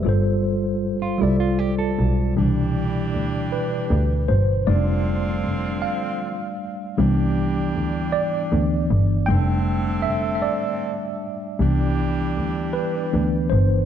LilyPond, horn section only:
\new Staff \with { instrumentName = "Horn section" } { \time 6/8 \key c \major \tempo 4. = 52 r2. | <e g d' g'>2~ <e g d' g'>8 r8 | <d f c' f'>2~ <d f c' f'>8 r8 | <e g d' g'>2~ <e g d' g'>8 r8 |
<d a c' a'>2~ <d a c' a'>8 r8 | <e g d' g'>2~ <e g d' g'>8 r8 | }